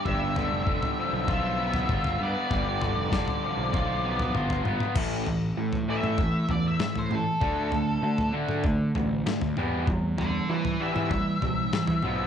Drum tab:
CC |----------------|----------------|x---------------|----------------|
SD |----------------|----o-----------|------------o---|------------o---|
T2 |------------o---|--o---------o-oo|-------o----o-o-|-------o----o-o-|
FT |o-o--o--o--o-o--|o-o--o--o--o-o--|o-o--o--o-o--o--|o-o--o--o-o--o--|
BD |o---o---o---o---|o---o---o-------|o-------o-------|o-------o-------|

CC |----------------|
SD |------------o---|
T2 |-------o----o-o-|
FT |o-o--o--o-o--o--|
BD |o-------o-------|